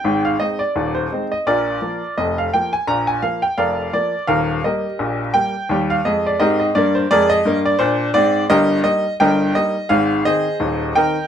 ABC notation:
X:1
M:2/4
L:1/16
Q:"Swing 16ths" 1/4=85
K:Eb
V:1 name="Upright piano"
g f e d2 c2 e | [FBd]4 e f g a | b a f g [Bdf]2 d2 | [Bf]2 [GBe]4 g2- |
g f e d [GBe] e d c | [ABd] e2 d c2 d2 | [GBe]2 e2 [Beg]2 e2 | f2 [Ace]4 [Beg]2 |]
V:2 name="Upright piano" clef=bass
[A,,,A,,]2 [A,CE]2 [E,,,E,,]2 [A,CE]2 | [B,,,B,,]2 [F,B,]2 [F,,,F,,]2 [F,B,]2 | [B,,,B,,]2 [F,B,]2 [F,,,F,,]2 [F,B,]2 | [E,,,E,,]2 [G,B,]2 [B,,,B,,]2 [G,B,]2 |
[E,,G,]2 [F,,A,]2 [A,,C]2 [G,,B,]2 | [F,,A,]2 [G,,B,]2 [B,,D]2 [A,,C]2 | [G,,,G,,]2 [G,B,E]2 [G,,,G,,]2 [G,B,E]2 | [A,,,A,,]2 [E,CE]2 [E,,,E,,]2 [E,CE]2 |]